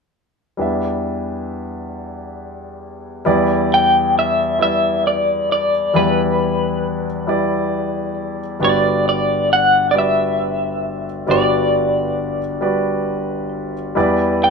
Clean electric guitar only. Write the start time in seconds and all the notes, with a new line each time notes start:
3.74 G5
4.19 E5
4.62 E5
5.07 D5
5.52 D5
5.96 B4
8.64 D5
9.09 D5
9.53 F#5
9.91 D5
9.98 E5
11.31 D5
12.72 C5
14.44 G5